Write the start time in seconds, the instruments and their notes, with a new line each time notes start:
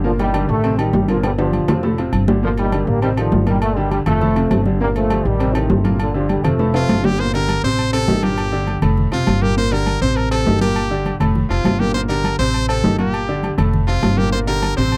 Already playing: upright bass G1
0.04 grand piano A#2 A#3 A#4, trombone section D3 F3, high conga
0.19 trombone section D#3 G3, high conga, low agogo
0.34 grand piano D3 D4 G4, high conga, low timbale, low agogo
0.49 upright bass A1, trombone section D#3 A3, high conga
0.64 grand piano C3 C4 C5, high conga, low agogo
0.78 grand piano D#3 D#4 G4, trombone section D#3 G3, high conga, low agogo
0.93 upright bass G1, high conga, low timbale
1.08 grand piano A#2 A#3 A#4, trombone section D3 F3, high conga, low agogo
1.23 trombone section D3 G3, high timbale, low agogo
1.38 grand piano D3 D4 G4, trombone section D3 F3, high conga, high timbale
1.53 high conga, low agogo
1.68 upright bass F1, grand piano C3 C4 F4, low conga, low timbale, low agogo
1.83 grand piano A2 A3 A4, high conga, low timbale
1.98 grand piano C3 C4 F4, high conga, low agogo
2.13 upright bass G1, high conga, low agogo
2.28 grand piano D3 D4 G4, high conga, low timbale
2.43 grand piano A#2 A#3 A#4, trombone section D3 F3, high conga
2.57 trombone section D#3 G3, high conga, low agogo
2.72 grand piano D3 D4 G4, high conga, low timbale, low agogo
2.87 upright bass A1, trombone section G3 A#3, high conga
3.02 grand piano C3 C4 C5, trombone section D#3 G3, high conga, low agogo
3.17 trombone section D3 F3, grand piano D#3 D#4 G4, high conga, low agogo
3.32 upright bass G1, high conga, low timbale
3.46 grand piano A#2 A#3 A#4, trombone section D#3 G3, high conga, low agogo
3.62 trombone section D3 A3, low agogo
3.76 grand piano D3 D4 G4, trombone section D#3 G3, high conga
3.91 trombone section D3 G3, high conga, low timbale, low agogo
4.06 upright bass F1, grand piano C3 C4 F4, trombone section F3 A3, low conga, low agogo
4.21 grand piano A2 A3 A4, high conga, low conga
4.36 grand piano C3 C4 F4, high conga, low agogo
4.51 upright bass G1, high conga, low timbale, low agogo
4.66 grand piano D3 D4 G4, high conga
4.80 grand piano A#2 A#3 A#4, trombone section G3 A#3, high conga
4.95 trombone section F3 A3, high conga, low agogo
5.10 grand piano D3 D4 G4, high conga, low timbale, low agogo
5.25 upright bass A1, trombone section D#3 G3, high conga
5.39 grand piano C3 C4 C5, high conga, low agogo
5.55 trombone section A2 C3, grand piano D#3 D#4 G4, high conga, low agogo
5.70 upright bass G1, high conga, low timbale
5.84 grand piano A#2 A#3 A#4, high conga, low agogo
6.00 trombone section A#2 D3, high conga, low agogo
6.14 grand piano D3 D4 G4, trombone section D3 F3, high conga
6.29 trombone section D3 G3, high conga, low timbale, low agogo
6.44 upright bass F1, grand piano C3 C4 F4, trombone section F3 A3, low conga, low agogo
6.59 grand piano A2 A3 A4, high timbale
6.74 grand piano C3 C4 F4, trumpet F4, high conga, high timbale, low agogo
6.89 upright bass G1, high conga, low timbale, low agogo
7.04 grand piano D3 D4 G4, trumpet G4, high conga, low timbale
7.19 grand piano A#2 A#3 A#4, trumpet C5
7.34 grand piano D3 D4 G4, trumpet A#4, high conga, low agogo
7.49 high conga, low timbale, low agogo
7.63 upright bass A1, grand piano C3 C4 C5, trumpet C5, high conga
7.78 high conga, low agogo
7.93 grand piano C3 C4 C5, trumpet A4, high conga, low agogo
8.08 upright bass G1, grand piano D#3 D#4 G4, high conga, low timbale
8.22 grand piano A#2 A#3 A#4, trumpet G4, high conga, low agogo
8.38 high conga, low agogo
8.52 grand piano D3 D4 G4, high conga
8.67 high conga, low timbale, low agogo
8.82 upright bass F1, grand piano A2 A3 A4, low conga, low agogo
8.97 high conga, low conga
9.11 upright bass F1, grand piano C3 C4 F4, trumpet F4, high conga, low agogo
9.27 upright bass G1, high conga, low timbale, low agogo
9.42 grand piano A#2 A#3 A#4, trumpet G4, high conga
9.57 grand piano A#2 A#3 A#4, trumpet C5
9.71 grand piano D3 D4 G4, trumpet A#4, high conga, low agogo
9.86 high conga, low timbale, low agogo
10.01 upright bass A1, grand piano C3 C4 C5, trumpet C5, high conga
10.17 trumpet A#4, high conga, low agogo
10.31 grand piano C3 C4 C5, trumpet A4, high conga, low agogo
10.46 upright bass G1, grand piano D#3 D#4 G4, high conga, low timbale
10.61 grand piano A#2 A#3 A#4, trumpet G4, high conga, low agogo
10.76 high conga, low agogo
10.91 grand piano D3 D4 G4, high conga
11.05 high conga, low timbale, low agogo
11.20 upright bass F1, grand piano A2 A3 A4, low conga, low agogo
11.35 high conga, low conga
11.49 upright bass F1, grand piano C3 C4 F4, trumpet F4, high conga, low agogo
11.64 upright bass G1, high conga, low timbale, low agogo
11.79 grand piano A#2 A#3 A#4, trumpet G4, high conga
11.94 grand piano A#2 A#3 A#4, trumpet C5
12.08 grand piano D3 D4 G4, trumpet A#4, high conga, low agogo
12.24 high conga, low timbale, low agogo
12.39 upright bass A1, grand piano C3 C4 C5, trumpet C5, high conga
12.54 high conga, low agogo
12.68 grand piano C3 C4 C5, trumpet A4, high conga, low agogo
12.84 upright bass G1, grand piano D#3 D#4 G4, high conga, low timbale
12.99 grand piano A#2 A#3 A#4, trumpet G4, high conga, low agogo
13.14 high conga, low agogo
13.29 grand piano D3 D4 G4, high conga
13.43 high conga, low timbale, low agogo
13.57 upright bass F1, grand piano A2 A3 A4, low conga, low agogo
13.73 high conga, low conga
13.87 grand piano C3 C4 F4, trumpet F4, high conga, low agogo
14.03 upright bass G1, high conga, low timbale, low agogo
14.17 grand piano A#2 A#3 A#4, trumpet G4, high conga
14.32 grand piano A#2 A#3 A#4, trumpet C5, high conga
14.47 grand piano D3 D4 G4, trumpet A#4, high conga, low agogo
14.62 high conga, low timbale, low agogo
14.77 upright bass A1, grand piano C3 C4 C5, trumpet C5, high conga
14.92 high conga, low agogo